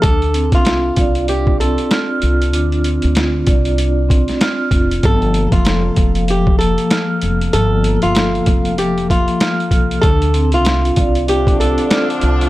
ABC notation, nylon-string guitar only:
X:1
M:4/4
L:1/16
Q:"Swing 16ths" 1/4=96
K:Dphr
V:1 name="Nylon-string guitar"
A3 F4- F G2 A3 z3 | z16 | A3 F4- F G2 A3 z3 | A3 F4- F G2 F6 |
A3 F4- F G2 A3 z3 |]